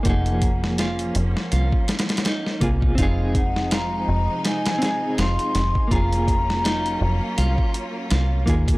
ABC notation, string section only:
X:1
M:4/4
L:1/8
Q:"Swing 16ths" 1/4=82
K:Gblyd
V:1 name="String section"
[F,B,D]8 | [C,F,A,E]8 | [G,B,DF]8 |]